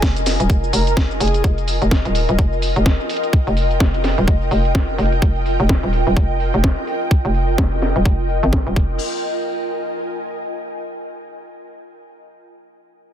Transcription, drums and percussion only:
0.02 kick, snare, shaker
0.16 closed hi-hat, shaker
0.26 snare, open hi-hat, shaker
0.40 closed hi-hat, shaker
0.50 kick, closed hi-hat, shaker
0.64 shaker
0.73 open hi-hat, shaker
0.87 closed hi-hat, shaker
0.97 kick, snare, closed hi-hat, shaker
1.11 shaker
1.20 open hi-hat, shaker
1.27 closed hi-hat
1.34 closed hi-hat, shaker
1.44 kick, closed hi-hat, shaker
1.58 closed hi-hat, shaker
1.68 open hi-hat, shaker
1.82 closed hi-hat, shaker
1.91 kick, snare, shaker
2.05 closed hi-hat, shaker
2.15 open hi-hat, shaker
2.29 closed hi-hat, shaker
2.39 kick, closed hi-hat, shaker
2.53 shaker
2.62 open hi-hat, shaker
2.76 closed hi-hat, shaker
2.86 kick, snare, closed hi-hat
3.00 shaker
3.09 open hi-hat, shaker
3.16 closed hi-hat
3.24 closed hi-hat, shaker
3.33 kick, closed hi-hat
3.47 closed hi-hat, shaker
3.57 open hi-hat, shaker
3.71 closed hi-hat, shaker
3.80 kick, snare, shaker
3.94 closed hi-hat, shaker
4.04 snare, open hi-hat, shaker
4.18 closed hi-hat, shaker
4.28 kick, closed hi-hat
4.42 shaker
4.51 open hi-hat, shaker
4.65 closed hi-hat, shaker
4.75 kick, snare, shaker
4.89 shaker
4.98 open hi-hat, shaker
5.05 closed hi-hat
5.12 closed hi-hat, shaker
5.22 kick
5.36 closed hi-hat, shaker
5.46 open hi-hat, shaker
5.60 closed hi-hat, shaker
5.69 kick, snare
5.83 closed hi-hat, shaker
5.93 open hi-hat, shaker
6.07 closed hi-hat, shaker
6.17 kick
6.31 shaker
6.40 open hi-hat, shaker
6.54 closed hi-hat, shaker
6.64 kick, snare
6.78 shaker
6.87 open hi-hat, shaker
6.94 closed hi-hat
7.01 closed hi-hat, shaker
7.11 kick
7.25 closed hi-hat
7.35 open hi-hat, shaker
7.48 closed hi-hat, shaker
7.58 kick, snare
7.72 closed hi-hat
7.82 snare, open hi-hat, shaker
7.96 closed hi-hat, shaker
8.05 kick
8.29 open hi-hat, shaker
8.53 kick, snare
8.76 kick, crash

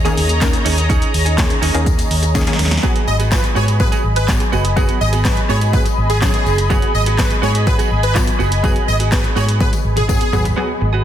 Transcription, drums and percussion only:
0.05 closed hi-hat, tambourine, shaker
0.18 open hi-hat, shaker
0.29 closed hi-hat, tambourine, shaker
0.41 kick, snare, clap, tambourine, shaker
0.53 closed hi-hat, shaker
0.66 open hi-hat, tambourine, shaker
0.78 closed hi-hat, tambourine, shaker
0.90 kick, tambourine, shaker
1.02 closed hi-hat, shaker
1.14 open hi-hat, tambourine, shaker
1.26 closed hi-hat, shaker
1.38 kick, snare, clap, tambourine, shaker
1.50 closed hi-hat, shaker
1.62 open hi-hat, tambourine, shaker
1.75 closed hi-hat, tambourine, shaker
1.86 kick, tambourine, shaker
1.99 closed hi-hat, tambourine, shaker
2.11 open hi-hat, shaker
2.23 closed hi-hat, tambourine, shaker
2.35 kick, snare, tambourine, shaker
2.41 snare
2.47 snare, closed hi-hat, shaker
2.53 snare
2.59 snare, open hi-hat, tambourine, shaker
2.65 snare
2.71 snare, closed hi-hat, tambourine, shaker
2.77 snare
2.83 kick, tambourine
2.96 closed hi-hat
3.08 tambourine
3.20 closed hi-hat, tambourine
3.32 kick, snare, clap, tambourine
3.44 closed hi-hat
3.56 tambourine
3.68 closed hi-hat, tambourine
3.80 kick, tambourine
3.92 closed hi-hat, tambourine
4.16 closed hi-hat, tambourine
4.28 kick, snare, clap, tambourine
4.40 closed hi-hat
4.53 tambourine
4.65 closed hi-hat
4.77 kick, tambourine
4.89 closed hi-hat
5.01 tambourine
5.13 closed hi-hat, tambourine
5.25 kick, snare, clap, tambourine
5.37 closed hi-hat
5.50 tambourine
5.61 closed hi-hat, tambourine
5.73 kick, tambourine
5.86 closed hi-hat, tambourine
6.10 closed hi-hat, tambourine
6.22 kick, snare, clap, tambourine
6.34 closed hi-hat
6.46 tambourine
6.58 closed hi-hat, tambourine
6.70 kick, tambourine
6.82 closed hi-hat
6.95 tambourine
7.06 closed hi-hat
7.19 kick, snare, clap, tambourine
7.30 closed hi-hat
7.43 tambourine
7.55 closed hi-hat
7.67 kick, tambourine
7.79 closed hi-hat, tambourine
8.03 closed hi-hat
8.15 kick, snare, clap, tambourine
8.27 closed hi-hat
8.40 tambourine
8.52 closed hi-hat, tambourine
8.64 kick, tambourine
8.76 closed hi-hat
8.88 tambourine
9.00 closed hi-hat
9.12 kick, snare, clap, tambourine
9.24 closed hi-hat
9.37 tambourine
9.49 closed hi-hat
9.60 kick, high tom, tambourine
9.73 closed hi-hat, high tom, tambourine
9.97 closed hi-hat, mid tom
10.09 kick, mid tom, tambourine
10.21 closed hi-hat
10.33 floor tom, tambourine
10.45 closed hi-hat, floor tom, tambourine

